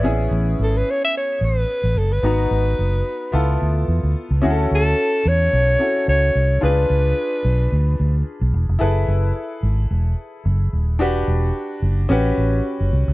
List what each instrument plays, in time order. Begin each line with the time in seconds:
Already playing: grand piano B4 D5
0.02 fingered electric bass A1, grand piano B3 C#4 E4 G#4
0.31 fingered electric bass A1
0.59 fingered electric bass G#1, alto saxophone A4
0.77 alto saxophone B4
0.90 alto saxophone C#5
1.04 alto saxophone E5
1.17 alto saxophone C#5
1.41 fingered electric bass A1, alto saxophone B4
1.84 fingered electric bass A1
1.95 fingered electric bass F#1, alto saxophone A4
2.11 fingered electric bass G1, alto saxophone B4
2.23 fingered electric bass G#1, grand piano B3 D#4 F#4 A#5
2.51 fingered electric bass G#1
2.79 fingered electric bass F#1
3.32 fingered electric bass C#2, grand piano B3 E4 F4 A4
3.62 fingered electric bass D2
3.88 fingered electric bass E2
4.03 fingered electric bass D2
4.31 fingered electric bass C#2
4.42 fingered electric bass D2, grand piano C#4 E4 F#4 G#4
4.50 grand piano A4
4.71 fingered electric bass D2, alto saxophone A4
5.25 fingered electric bass E2, alto saxophone C#5
5.53 fingered electric bass B1
5.79 grand piano C#4 E4 F#4 A4
6.08 fingered electric bass C#2, alto saxophone C#5
6.35 fingered electric bass C2
6.61 fingered electric bass C#2, grand piano D4 F4 G#4 B4, alto saxophone B4
6.90 fingered electric bass C#2
7.45 fingered electric bass B1
7.72 fingered electric bass D2
8.00 fingered electric bass D2
8.41 fingered electric bass B1
8.54 fingered electric bass E1
8.69 fingered electric bass F1
8.79 fingered electric bass F#1, grand piano E4 G#4 A4 B4
9.08 fingered electric bass F#1
9.63 fingered electric bass G#1
9.91 fingered electric bass E1
10.45 fingered electric bass F#1
10.73 fingered electric bass D#1
10.99 fingered electric bass E1, grand piano D4 F#4 G4 B4
11.28 fingered electric bass E1
11.82 fingered electric bass F#1
12.09 fingered electric bass A1, grand piano C#4 F#4 G4 B4
12.38 fingered electric bass A1
12.80 fingered electric bass F#1
12.93 fingered electric bass C2
13.08 fingered electric bass C#2